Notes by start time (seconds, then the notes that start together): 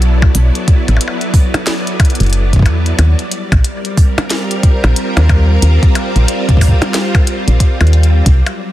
Already playing: B1 F#3 B3 E4 A4 D5
0.02 closed hi-hat
0.22 kick, percussion blips
0.35 B1, closed hi-hat
0.55 closed hi-hat
0.68 kick, closed hi-hat
0.88 A1, closed hi-hat, percussion blips
0.97 percussion blips
1.01 closed hi-hat
1.08 percussion blips
1.21 closed hi-hat
1.34 kick, open hi-hat
1.54 closed hi-hat, percussion blips
1.67 snare, closed hi-hat
1.87 closed hi-hat
2.00 kick, closed hi-hat, percussion blips
2.05 closed hi-hat
2.10 closed hi-hat
2.15 closed hi-hat
2.20 F#1, closed hi-hat
2.23 closed hi-hat
2.27 closed hi-hat
2.30 closed hi-hat
2.33 closed hi-hat
2.53 kick, closed hi-hat
2.56 kick
2.59 kick
2.62 E2, kick, closed hi-hat, percussion blips
2.86 closed hi-hat
2.98 D#2 G3, closed hi-hat, percussion blips
3.19 closed hi-hat
3.32 closed hi-hat
3.36 A#4
3.47 C4
3.52 A#1, kick, closed hi-hat, percussion blips
3.64 closed hi-hat
3.78 F4
3.85 closed hi-hat
3.97 kick, open hi-hat
4.18 closed hi-hat, percussion blips
4.30 snare, closed hi-hat
4.51 closed hi-hat
4.63 kick, closed hi-hat
4.84 A#1, closed hi-hat, percussion blips
4.96 closed hi-hat
5.17 D#2, closed hi-hat, percussion blips
5.29 kick, closed hi-hat, percussion blips
5.62 D#2, closed hi-hat
5.83 kick, closed hi-hat
5.95 closed hi-hat, percussion blips
6.16 A#1, closed hi-hat
6.28 closed hi-hat
6.49 kick, closed hi-hat
6.50 kick
6.57 kick
6.61 kick, open hi-hat, percussion blips
6.68 kick
6.72 kick
6.82 closed hi-hat, percussion blips
6.94 snare, closed hi-hat
7.15 kick, closed hi-hat, percussion blips
7.27 closed hi-hat
7.48 A#1, closed hi-hat
7.60 kick, closed hi-hat
7.81 D#2, closed hi-hat, percussion blips
7.87 closed hi-hat
7.93 closed hi-hat
8.03 closed hi-hat
8.26 C2 F#3, kick, closed hi-hat
8.47 closed hi-hat, percussion blips